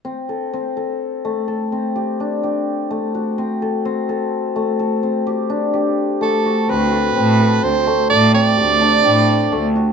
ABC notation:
X:1
M:7/4
L:1/8
Q:1/4=127
K:Dmix
V:1 name="Soprano saxophone"
z12 z2 | z12 A2 | B4 c2 d d6 z |]
V:2 name="Hammered dulcimer"
C A C A2 A, A C G D G2 A, F | C A C A2 A, A C G D G2 A, F | C A C A2 A, A C G D G2 A, F |]
V:3 name="Cello" clef=bass
z12 z2 | z12 z2 | D,,2 A,,2 D,, z A,,2 D,,2 A,,2 D,,2 |]